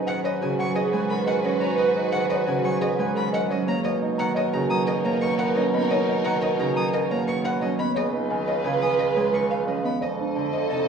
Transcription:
Already playing: bassoon G#2, harp A#2 F#3 C#4, grand piano D#4, string section F#4 B4, french horn B4
0.06 harp D#3, marimba F#5, violin F#5
0.24 grand piano B4, marimba C#5, violin D#5
0.41 harp C#3, grand piano F#4, violin G#5
0.59 harp F#3, marimba F#5, violin C#6
0.75 marimba G#4, grand piano G#4, violin D#5
0.92 harp G#3, grand piano B4, violin G#5
1.09 harp D#3, marimba A#4, violin B5
1.26 grand piano A#4, marimba D#5, violin F#5
1.44 harp F#3, grand piano C#4, violin D#5
1.61 marimba C#5, violin A#5
1.78 marimba B4, grand piano B4, violin D#5
1.96 grand piano D#4
2.12 harp D#3, violin F#5, marimba F#5
2.30 grand piano B4, marimba C#5, violin D#5
2.47 harp C#3, grand piano F#4, violin G#5
2.63 harp F#3, marimba F#5, violin C#6
2.81 marimba G#4, grand piano G#4, violin D#5
2.98 harp G#3, grand piano B4, violin G#5
3.15 harp D#3, marimba A#4, violin B5
3.33 grand piano A#4, marimba D#5, violin F#5
3.50 harp F#3, grand piano C#4, violin D#5
3.67 harp A#3, marimba C#5, violin A#5
3.83 bassoon B2, string section D#4 A#4, french horn A#4, marimba C#5, grand piano C#5, violin D#5
4.02 grand piano D#4
4.18 harp D#3, violin F#5, marimba A#5
4.34 grand piano C#5, marimba D#5, violin D#5
4.53 harp C#3, grand piano F#4, violin A#5
4.70 harp F#3, marimba A#5, violin D#6
4.87 marimba A#4, grand piano A#4, violin D#5
5.05 harp A#3, grand piano C#5, violin A#5
5.21 harp D#3, marimba B4, violin C#6
5.38 grand piano B4, violin F#5, marimba F#5
5.56 harp F#3, grand piano C#4, violin D#5
5.72 harp B3, marimba D#5, violin B5
5.90 grand piano C#5, marimba C#5, violin D#5
6.08 grand piano D#4
6.24 harp D#3, violin F#5, marimba A#5
6.41 grand piano C#5, violin D#5, marimba D#5
6.59 harp C#3, grand piano F#4, violin A#5
6.76 harp F#3, marimba A#5, violin D#6
6.93 grand piano A#4, marimba A#4, violin D#5
7.10 harp A#3, grand piano C#5, violin A#5
7.27 harp D#3, marimba B4, violin C#6
7.45 grand piano B4, violin F#5, marimba F#5
7.61 harp F#3, grand piano C#4, violin D#5
7.79 harp B3, marimba D#5, violin B5
7.95 bassoon C#2, string section F4 B4, french horn B4, marimba C#5, grand piano C#5, violin D#5
8.13 grand piano D#4
8.30 harp D#3, marimba G#5
8.48 grand piano C#5, violin D#5, marimba D#5
8.64 harp C#3, grand piano F4, violin G#5
8.81 harp F3, marimba G#5, violin D#6
8.99 grand piano G#4, marimba G#4, violin D#5
9.16 harp G#3, grand piano C#5, violin G#5
9.33 harp D#3, marimba B4, violin C#6
9.50 grand piano B4, marimba F5, violin F5
9.67 harp F3, grand piano C#4, violin D#5
9.84 harp B3, marimba D#5, violin B5
10.01 bassoon F2, string section A4 D#5, french horn A4, grand piano C5, marimba D5, violin D#5
10.19 grand piano D4
10.36 harp D3, marimba A5
10.53 grand piano C5, violin D#5, marimba D#5
10.70 harp C3, grand piano D#4, violin A5

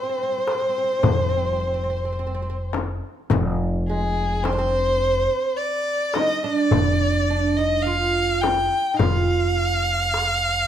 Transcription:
Already playing: violin C5
0.03 oud C4
0.09 oud C4
0.18 oud C4
0.23 oud C4
0.32 oud C4
0.38 oud C4
0.47 oud C4, darbuka tek
0.54 oud C4
0.62 oud C4
0.69 oud C4
0.78 oud C4
0.84 oud C4
0.93 oud C4
0.99 oud C4
1.03 upright bass F1, oud C4, frame drum, darbuka dum
1.15 oud C4
1.22 oud C4
1.29 oud C4
1.37 oud C4
1.45 oud C4
1.53 oud C4
1.60 oud C4
1.67 oud C4
1.74 oud C4
1.84 oud C4
1.90 oud C4
1.97 oud C4
2.05 oud C4
2.12 oud C4
2.19 oud C4
2.27 oud C4
2.35 oud C4
2.42 oud C4
2.50 oud C4
2.73 darbuka tek, frame drum
3.30 upright bass F1, frame drum, darbuka dum
3.88 oud G#3, violin G#4
4.43 oud C4, violin C5, darbuka tek, frame drum
4.53 oud D4
4.59 oud C4
5.57 violin D5
6.14 oud D#4, violin D#5, darbuka tek, frame drum
6.43 oud D4, violin D#5
6.54 violin D5
6.71 upright bass F1, darbuka dum, frame drum
7.30 oud D4
7.57 oud D#4, violin D#5
7.82 violin F5
7.87 oud F4
8.42 violin G5, darbuka tek, frame drum
8.94 oud D#4, violin F5
8.99 upright bass F1, oud F4, darbuka dum, frame drum
9.57 darbuka ka
10.14 darbuka tek

